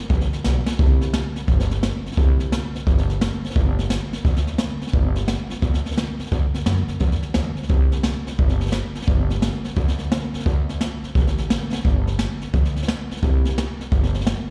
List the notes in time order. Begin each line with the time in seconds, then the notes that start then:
0.09 A1, kick, snare
0.21 snare
0.33 muted upright bass stroke, snare
0.44 B1, snare, hi-hat pedal
0.66 snare
0.79 C2, kick, snare
1.01 snare
1.13 snare, hi-hat pedal
1.36 muted upright bass stroke, snare
1.48 G1, kick, snare
1.60 snare
1.71 snare
1.83 snare, hi-hat pedal
2.06 muted upright bass stroke, snare
2.12 snare
2.17 C2, kick, snare
2.40 snare
2.52 snare, hi-hat pedal
2.74 muted upright bass stroke, snare
2.87 G1, kick, snare
2.98 snare
3.10 snare
3.21 snare, hi-hat pedal
3.43 muted upright bass stroke, snare
3.50 snare
3.56 G1, kick, snare
3.79 snare
3.90 snare, hi-hat pedal
4.12 muted upright bass stroke, snare
4.25 D2, kick, snare
4.36 snare
4.47 snare
4.58 snare, hi-hat pedal
4.79 muted upright bass stroke, snare
4.87 snare
4.93 G1, kick, snare
5.16 snare
5.28 snare, hi-hat pedal
5.49 muted upright bass stroke, snare
5.62 D2, kick, snare
5.74 snare
5.86 snare
5.91 snare
5.98 snare, hi-hat pedal
6.19 muted upright bass stroke, snare
6.26 snare
6.31 D2, kick, snare
6.53 muted upright bass stroke, snare
6.66 F#2, snare, hi-hat pedal
6.88 muted upright bass stroke, snare
7.00 E2, kick, snare
7.12 snare
7.22 muted upright bass stroke, snare
7.34 D2, snare, hi-hat pedal
7.56 muted upright bass stroke, snare
7.63 snare
7.68 C2, kick, snare
7.92 snare
8.03 snare, hi-hat pedal
8.26 muted upright bass stroke, snare
8.38 G1, kick, snare
8.49 snare
8.61 snare
8.66 snare
8.72 snare, hi-hat pedal
8.95 muted upright bass stroke, snare
9.02 snare
9.07 G1, kick, snare
9.30 snare
9.42 snare, hi-hat pedal
9.64 muted upright bass stroke, snare
9.76 D2, kick, snare
9.88 snare
9.99 snare
10.12 snare, hi-hat pedal
10.34 muted upright bass stroke, snare
10.40 snare
10.46 D2, kick, snare
10.69 snare
10.81 snare, hi-hat pedal
11.03 muted upright bass stroke, snare
11.15 A1, kick, snare
11.27 snare
11.38 snare
11.50 snare, hi-hat pedal
11.73 muted upright bass stroke, snare
11.85 G1, kick, snare
12.07 snare
12.19 snare, hi-hat pedal
12.41 muted upright bass stroke, snare
12.53 D2, kick, snare
12.65 snare
12.76 snare
12.82 snare
12.88 snare, hi-hat pedal
13.11 muted upright bass stroke, snare
13.17 snare
13.22 C2, kick, snare
13.45 snare
13.58 snare, hi-hat pedal
13.80 muted upright bass stroke, snare
13.92 G1, kick, snare
14.03 snare
14.14 snare
14.21 snare
14.27 snare, hi-hat pedal